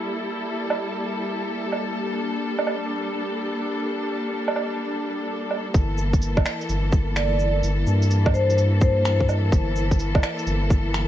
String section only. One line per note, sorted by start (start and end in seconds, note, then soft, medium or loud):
0.00 5.71 G3 medium
0.00 5.71 A#3 medium
0.00 1.93 E4 medium
0.00 5.71 A4 medium
1.96 5.71 D4 medium
5.75 11.08 E3 medium
5.75 11.08 A#3 medium
5.75 11.08 A4 medium